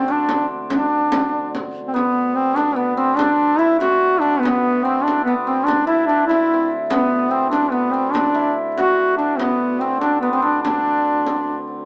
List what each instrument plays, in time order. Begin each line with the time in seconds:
Already playing: harmonium D2, duduk C4, hammered dulcimer C4 E4 F#4
0.08 hammered dulcimer D4, duduk D4
0.29 frame drum
0.50 frame drum
0.70 hammered dulcimer D4, duduk D4, frame drum
1.12 frame drum
1.55 frame drum
1.75 frame drum
1.88 duduk C4
1.94 harmonium D2, hammered dulcimer B3, duduk B3, frame drum
2.17 frame drum
2.36 duduk C4, frame drum
2.56 hammered dulcimer D4, duduk D4, frame drum
2.76 duduk B3, hammered dulcimer B3, frame drum
2.97 duduk C4, hammered dulcimer C4
3.17 duduk D4, hammered dulcimer D4, frame drum
3.40 frame drum
3.58 duduk E4, hammered dulcimer E4, frame drum
3.79 duduk F#4, hammered dulcimer F#4, frame drum
4.04 frame drum
4.20 duduk D4, hammered dulcimer D4
4.40 duduk B3, hammered dulcimer B3
4.45 frame drum
4.66 frame drum
4.83 duduk C4, hammered dulcimer C4, frame drum
5.03 duduk D4
5.07 hammered dulcimer D4, frame drum
5.24 duduk B3, hammered dulcimer B3
5.28 frame drum
5.44 duduk C4, hammered dulcimer C4
5.65 duduk D4, hammered dulcimer D4, frame drum
5.87 duduk E4, hammered dulcimer E4
6.06 duduk D4, hammered dulcimer D4
6.27 duduk E4, hammered dulcimer E4
6.31 frame drum
6.51 hammered dulcimer C4, frame drum
6.71 frame drum
6.89 harmonium D2, duduk B3, hammered dulcimer B3, frame drum
7.11 frame drum
7.30 duduk C4, hammered dulcimer C4, frame drum
7.50 duduk D4, hammered dulcimer D4, frame drum
7.71 duduk B3, hammered dulcimer B3, frame drum
7.91 duduk C4, hammered dulcimer C4
8.12 duduk D4, hammered dulcimer D4, frame drum
8.34 hammered dulcimer E4, frame drum
8.57 frame drum
8.75 duduk F#4, hammered dulcimer F#4, frame drum
8.98 frame drum
9.17 duduk D4, hammered dulcimer D4
9.38 duduk B3, hammered dulcimer B3, frame drum
9.61 frame drum
9.80 duduk C4, hammered dulcimer C4, frame drum
10.01 duduk D4, hammered dulcimer D4, frame drum
10.21 duduk B3, hammered dulcimer B3, frame drum
10.32 duduk C4, hammered dulcimer C4
10.42 hammered dulcimer D4, duduk D4
10.63 duduk D4, hammered dulcimer D4, frame drum
11.06 frame drum
11.26 frame drum
11.47 frame drum
11.68 frame drum